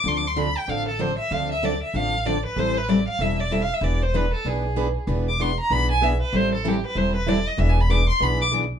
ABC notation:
X:1
M:4/4
L:1/8
Q:"Swing" 1/4=191
K:Am
V:1 name="Violin"
(3c' d' c' b g f A c e | f e d e f2 d B | c B d f e d (3e f e | d c B A ^G3 z |
z d' c' _b =b ^g e B | c A G B c B d ^d | (3e ^g b d' c' b d' z2 |]
V:2 name="Steel-string acoustic guitar"
[D,F,CDA] z [D,F,CDA] z [D,F,CDA] z [D,F,CDA] z | [D,F,CDA] z [D,F,CDA] z [D,F,CDA] z [D,F,CDA] z | [E,G,CEA] z [E,G,CEA] z [E,G,CEA] z [E,G,CEA] z | [E,B,D^G] z [E,B,DG] z [E,B,DG] z [E,B,DG] z |
[E,B,D^G] z [E,B,DG] z [E,B,DG] z [E,B,DG] z | [E,G,CEA] z [E,G,CEA] z [E,G,CEA] z [E,G,CEA] z | [E,B,D^G] z [E,B,DG] z [E,B,DG] z [E,B,DG] z |]
V:3 name="Steel-string acoustic guitar"
[D,F,CDA] z [D,F,CDA] z [D,F,CDA] z [D,F,CDA] z | [D,F,CDA] z [D,F,CDA] z [D,F,CDA] z [D,F,CDA] z | [E,G,CEA] z [E,G,CEA] z [E,G,CEA] z [E,G,CEA] z | [E,B,D^GB] z [E,B,DGB] z [E,B,DGB] z [E,B,DGB] z |
[E,B,D^GB] z [E,B,DGB] z [E,B,DGB] z [E,B,DGB] z | [E,G,CEA] z [E,G,CEA] z [E,G,CEA] z [E,G,CEA] z | [E,B,D^GB] z [E,B,DGB] z [E,B,DGB] z [E,B,DGB] z |]
V:4 name="Upright bass" clef=bass
D,,4 A,,,4 | D,,4 A,,,4 | A,,,4 E,,,4 | E,,,4 B,,,4 |
E,,,4 B,,,4 | A,,,4 E,,,4 | E,,,4 B,,,4 |]